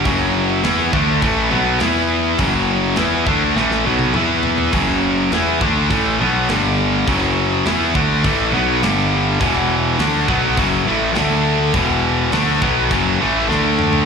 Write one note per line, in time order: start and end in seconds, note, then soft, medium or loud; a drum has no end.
0.05 0.60 F#1 loud
0.05 0.63 F#2 medium
0.05 0.63 C#3 medium
0.05 0.63 F#3 loud
0.05 kick loud
0.05 open hi-hat soft
0.63 0.91 E2 medium
0.63 0.92 E3 loud
0.63 0.92 B3 loud
0.63 0.93 E4 loud
0.63 snare medium
0.63 open hi-hat medium
0.93 1.20 D2 medium
0.93 1.21 D3 medium
0.93 1.22 A3 medium
0.93 1.22 D4 medium
0.93 kick medium
1.22 1.50 A1 medium
1.22 1.50 A2 loud
1.22 1.50 E3 medium
1.22 1.51 A3 loud
1.22 kick medium
1.22 open hi-hat medium
1.50 1.79 B1 medium
1.50 1.79 B2 medium
1.50 1.80 F#3 medium
1.50 1.79 B3 medium
1.80 2.35 E2 medium
1.80 2.38 E3 medium
1.80 2.38 B3 medium
1.80 2.39 E4 loud
1.80 snare medium
1.80 open hi-hat soft
2.38 2.94 F#1 medium
2.38 2.96 F#2 medium
2.38 2.96 C#3 medium
2.38 2.97 F#3 medium
2.38 kick medium
2.38 open hi-hat medium
2.96 3.25 E2 medium
2.96 3.26 E3 medium
2.96 3.26 B3 medium
2.96 3.26 E4 loud
2.96 snare loud
2.96 open hi-hat soft
3.26 3.54 D2 medium
3.26 3.55 D3 medium
3.26 3.56 A3 medium
3.26 3.56 D4 loud
3.26 kick medium
3.56 3.83 A1 medium
3.56 3.84 A2 medium
3.56 3.84 E3 medium
3.56 3.85 A3 medium
3.56 snare medium
3.71 snare soft
3.85 4.13 B1 medium
3.85 4.13 B2 medium
3.85 4.14 F#3 medium
3.85 4.14 B3 medium
3.99 high tom medium
4.14 4.70 E2 medium
4.14 4.72 E3 medium
4.14 4.72 B3 medium
4.14 4.73 E4 medium
4.14 mid tom medium
4.43 floor tom medium
4.58 floor tom medium
4.72 5.28 F#1 medium
4.72 5.30 F#2 medium
4.72 5.31 C#3 medium
4.72 5.31 F#3 medium
4.72 kick medium
4.72 open hi-hat medium
5.32 5.59 E2 medium
5.32 5.60 E3 medium
5.32 5.60 B3 medium
5.32 5.61 E4 loud
5.32 snare medium
5.32 open hi-hat soft
5.61 5.88 D2 medium
5.61 5.89 D3 medium
5.61 5.90 A3 medium
5.61 5.90 D4 loud
5.61 kick loud
5.90 6.17 A1 medium
5.90 6.18 A2 medium
5.90 6.19 E3 loud
5.90 6.19 A3 medium
5.90 kick medium
5.90 open hi-hat soft
6.20 6.47 B1 loud
6.20 6.48 B2 medium
6.20 6.48 F#3 medium
6.20 6.48 B3 medium
6.49 7.03 G1 medium
6.49 7.06 G2 medium
6.49 7.07 D3 medium
6.49 7.07 G3 medium
6.49 snare loud
6.49 open hi-hat soft
7.07 7.62 F#1 medium
7.07 7.65 F#2 medium
7.07 7.65 C#3 loud
7.07 7.66 F#3 loud
7.07 kick medium
7.07 open hi-hat medium
7.66 7.93 E2 medium
7.66 7.94 E3 medium
7.66 7.94 B3 loud
7.66 7.94 E4 loud
7.66 snare medium
7.66 open hi-hat medium
7.95 8.22 D2 medium
7.95 8.23 D3 medium
7.95 8.24 A3 loud
7.95 8.24 D4 loud
7.95 kick loud
8.24 8.51 A1 medium
8.24 8.53 A2 medium
8.24 8.53 E3 loud
8.24 8.53 A3 loud
8.24 kick loud
8.24 open hi-hat medium
8.53 8.80 B1 loud
8.53 8.81 B2 medium
8.53 8.82 F#3 medium
8.53 8.82 B3 medium
8.82 9.37 G1 medium
8.82 9.40 G2 medium
8.82 9.40 D3 medium
8.82 9.40 G3 medium
8.82 snare loud
8.82 open hi-hat medium
9.41 9.95 E1 medium
9.41 9.98 E2 medium
9.41 9.98 B2 medium
9.41 9.99 E3 medium
9.41 kick medium
9.41 open hi-hat medium
9.99 10.26 D2 medium
9.99 10.27 D3 medium
9.99 10.28 A3 medium
9.99 10.28 D4 loud
9.99 snare medium
9.99 open hi-hat soft
10.28 10.56 B1 medium
10.28 10.57 B2 medium
10.28 10.57 F#3 medium
10.28 10.57 B3 loud
10.28 kick loud
10.57 10.85 F#1 medium
10.57 10.86 F#2 medium
10.57 10.86 C#3 medium
10.57 10.86 F#3 loud
10.57 kick loud
10.57 open hi-hat soft
10.86 11.13 A1 medium
10.86 11.16 A2 medium
10.86 11.17 E3 medium
10.86 11.17 A3 medium
11.15 11.71 D2 medium
11.15 11.74 D3 medium
11.15 11.74 A3 medium
11.15 11.74 D4 medium
11.15 snare loud
11.15 open hi-hat soft
11.74 12.28 E1 medium
11.74 12.32 E2 medium
11.74 12.32 B2 loud
11.74 12.32 E3 medium
11.74 kick loud
11.74 open hi-hat medium
12.32 12.60 D2 medium
12.32 12.61 D3 medium
12.32 12.61 A3 medium
12.32 12.61 D4 loud
12.32 snare loud
12.32 open hi-hat medium
12.62 12.89 B1 medium
12.62 12.90 B2 medium
12.62 12.90 F#3 loud
12.62 12.90 B3 medium
12.62 kick loud
12.91 13.18 F#1 medium
12.91 13.19 F#2 medium
12.91 13.20 C#3 medium
12.91 13.20 F#3 medium
12.91 kick medium
12.91 open hi-hat medium
13.21 13.48 A1 medium
13.21 13.48 A2 medium
13.21 13.49 E3 medium
13.21 13.48 A3 medium
13.49 14.03 D2 medium
13.49 14.05 D3 medium
13.49 14.05 A3 medium
13.49 14.05 D4 medium
13.49 snare medium
13.79 mid tom medium
13.93 floor tom medium